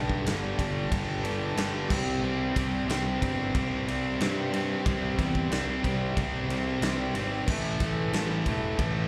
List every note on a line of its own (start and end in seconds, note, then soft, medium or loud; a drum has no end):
0.00 0.21 B1 medium
0.00 0.24 G2 medium
0.00 1.55 G2 medium
0.00 0.24 D3 medium
0.00 1.56 D3 medium
0.00 0.26 G3 loud
0.00 1.59 G3 loud
0.09 kick medium
0.25 0.53 G1 medium
0.25 0.57 G2 medium
0.25 0.58 D3 medium
0.25 0.59 G3 medium
0.25 snare loud
0.25 ride loud
0.58 0.86 G1 medium
0.58 0.92 G2 loud
0.58 0.92 D3 loud
0.58 0.93 G3 loud
0.58 kick medium
0.58 ride medium
0.92 1.19 G1 medium
0.92 1.24 G2 medium
0.92 1.24 D3 loud
0.92 1.26 G3 loud
0.92 kick loud
0.92 ride loud
1.24 1.52 G1 loud
1.24 1.55 G2 medium
1.24 1.56 D3 loud
1.24 1.57 G3 loud
1.24 ride medium
1.56 1.84 G1 loud
1.56 1.88 G2 medium
1.56 1.88 D3 loud
1.56 1.89 G3 loud
1.56 snare loud
1.56 ride loud
1.89 2.18 C2 loud
1.89 2.22 C3 medium
1.89 2.22 G3 loud
1.89 2.23 C4 loud
1.89 kick loud
1.89 crash loud
2.22 2.50 C2 loud
2.22 2.56 C3 loud
2.22 2.56 G3 loud
2.22 2.56 C4 loud
2.56 2.83 C2 medium
2.56 2.87 C3 medium
2.56 2.88 G3 medium
2.56 2.89 C4 loud
2.56 kick loud
2.56 snare soft
2.56 ride medium
2.88 3.16 C2 medium
2.88 3.21 C3 medium
2.88 3.22 G3 medium
2.88 3.23 C4 medium
2.88 snare loud
2.88 ride loud
3.22 3.49 G1 medium
3.22 3.54 C3 medium
3.22 3.54 G3 loud
3.22 3.55 C4 loud
3.22 kick medium
3.22 ride medium
3.55 3.82 C2 medium
3.55 3.86 C3 medium
3.55 3.87 G3 medium
3.55 3.88 C4 loud
3.55 kick loud
3.55 ride loud
3.87 4.15 C2 medium
3.87 4.19 C3 loud
3.87 4.19 G3 medium
3.87 4.20 C4 loud
3.87 ride medium
4.20 4.75 G2 loud
4.20 4.51 C3 loud
4.20 4.52 G3 loud
4.20 4.53 C4 loud
4.20 snare loud
4.20 ride loud
4.53 4.83 C3 medium
4.53 4.84 G3 loud
4.53 4.85 C4 medium
4.53 ride medium
4.85 5.13 C2 loud
4.85 5.17 C3 medium
4.85 5.17 G3 loud
4.85 5.19 C4 loud
4.85 kick loud
4.85 ride loud
5.18 5.46 E2 medium
5.18 5.50 C3 medium
5.18 5.50 G3 medium
5.18 5.51 C4 medium
5.18 kick loud
5.18 snare soft
5.18 ride medium
5.35 kick medium
5.51 5.78 C2 loud
5.51 5.82 C3 medium
5.51 5.83 G3 medium
5.51 5.83 C4 loud
5.51 snare loud
5.51 ride loud
5.83 6.12 C2 medium
5.83 6.15 C3 medium
5.83 6.15 G3 loud
5.83 6.16 C4 loud
5.83 kick medium
5.83 ride medium
6.16 6.44 C2 medium
6.16 6.49 C3 medium
6.16 6.49 G3 medium
6.16 6.49 C4 loud
6.16 kick loud
6.16 ride loud
6.48 6.76 C2 loud
6.48 6.81 C3 medium
6.48 6.82 G3 medium
6.48 6.82 C4 loud
6.48 ride medium
6.81 7.09 C2 loud
6.81 7.14 C3 medium
6.81 7.15 G3 loud
6.81 7.15 C4 loud
6.81 snare loud
6.81 ride loud
7.14 7.42 G#1 medium
7.14 7.46 C3 medium
7.14 7.46 G3 medium
7.14 7.46 C4 medium
7.14 ride medium
7.47 7.75 A1 loud
7.47 7.79 A2 loud
7.47 7.80 E3 loud
7.47 7.80 A3 loud
7.47 kick loud
7.47 crash loud
7.80 8.08 A1 medium
7.80 8.13 A2 medium
7.80 8.13 E3 medium
7.80 8.13 A3 medium
7.80 kick loud
7.80 snare soft
7.80 ride medium
8.13 8.40 A1 loud
8.13 8.44 A2 medium
8.13 8.45 E3 medium
8.13 8.46 A3 medium
8.13 snare loud
8.13 ride loud
8.46 8.74 E1 medium
8.46 8.77 A2 loud
8.46 8.77 E3 loud
8.46 8.78 A3 loud
8.46 kick medium
8.46 ride medium
8.78 9.06 A1 medium
8.78 9.08 A2 medium
8.78 9.08 E3 medium
8.78 9.08 A3 loud
8.78 kick loud
8.78 ride loud